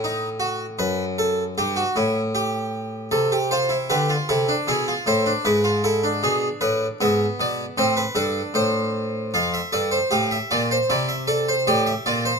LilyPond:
<<
  \new Staff \with { instrumentName = "Harpsichord" } { \time 4/4 \key a \minor \tempo 4 = 77 << { r1 | r8 c''8 b'8 a'8 gis'8 c''8 b'8 a'8 | gis'8 b'8 e''8 d''8 c''16 b'16 a'8 c''4 | \key f \major f''16 e''16 d''16 c''16 f''16 e''16 d''16 c''16 d''16 e''16 d''16 c''16 d''16 e''16 d''16 c''16 | } \\ { dis'8 fis'8 b'8 a'8 g'16 fis'16 e'8 g'4 | a'16 g'16 f'16 e'16 g'16 f'16 e'16 d'16 e'16 f'16 e'16 d'16 e'16 f'16 e'16 d'16~ | d'4 b4 c'8 d'4. | f'8 a'8 g'8 f'8 e'8 a'8 g'8 f'8 | } >> }
  \new Staff \with { instrumentName = "Harpsichord" } { \clef bass \time 4/4 \key a \minor a,4 fis,4 g,8 a,4. | c4 d8 c8 b,8 a,8 gis,4 | b,8 a,8 gis,8 b,8 a,8 g,8 a,4 | \key f \major f,8 g,8 a,8 bes,8 c4 a,8 bes,8 | }
>>